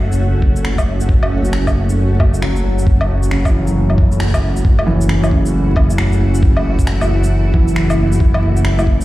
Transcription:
Already playing: F#1 A3 C#4 F#4
0.12 shaker
0.42 kick
0.56 shaker
0.65 finger snap
0.78 kick, low woodblock, shaker
1.01 shaker
1.09 kick
1.23 low woodblock
1.45 shaker
1.53 finger snap
1.67 kick, low woodblock, shaker
1.89 shaker
2.20 kick, low woodblock
2.34 shaker
2.42 F#3, finger snap
2.56 shaker
2.79 shaker
2.87 kick
3.01 low woodblock
3.23 shaker
3.31 C#3, finger snap
3.45 kick, low woodblock, shaker
3.50 E3
3.63 F#3
3.67 shaker
3.90 low woodblock
3.98 kick
4.12 shaker
4.20 finger snap
4.34 kick, low woodblock, shaker
4.57 shaker
4.65 F#1 A3 E4 F#4, kick
4.79 low woodblock
4.87 E3
5.01 shaker
5.09 finger snap
5.24 low woodblock, shaker
5.31 C#3, kick
5.46 shaker
5.76 kick, low woodblock
5.90 shaker
5.98 finger snap
6.13 shaker
6.35 shaker
6.43 kick
6.57 low woodblock
6.79 kick, shaker
6.87 finger snap
7.01 low woodblock, shaker
7.24 shaker
7.54 E3, kick
7.68 shaker
7.76 finger snap
7.90 low woodblock, shaker
8.12 shaker
8.20 G#4, kick
8.34 low woodblock
8.57 shaker
8.65 finger snap
8.79 low woodblock, shaker
8.87 kick
9.01 shaker

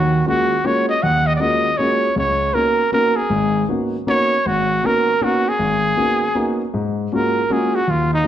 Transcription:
Already playing: D#2 D#3 F#4
0.26 G#3 A#3 C#4 F4 F#4
0.64 G#3 A#3 C#4 F4 F#4 C#5
0.89 D#5
1.03 D#2 F#5
1.27 D#5
1.36 D5
1.40 G#3 A#3 C#4 F4 F#4 D#5
1.78 G#3 A#3 C#4 F4 F#4 C#5
2.16 C#2 C#5
2.54 A#3 B3 C#4 D#4 F#4 A#4
2.92 A#3 B3 C#4 D#4 F#4 A#4
3.16 G#4
3.30 G#1 G#2
3.69 A#3 B3 C#4 D#4 F#4
4.07 A#3 B3 C#4 D#4 F#4 C#5
4.46 G#1 F#4
4.83 A#3 B3 C#4 D#4 F#4 A#4
5.21 A#3 B3 C#4 D#4 F#4
5.49 G#4
5.59 G#1
5.97 A#3 B3 C#4 D#4 F#4
6.35 A#3 B3 C#4 D#4 F#4
6.74 G#2
7.12 G#3 A#3 C#4 F4 F#4 A#4
7.50 G#3 A#3 C#4 F4 F#4 G#4
7.75 F#4
7.88 D#2 F4
8.14 D#4
8.24 G#3

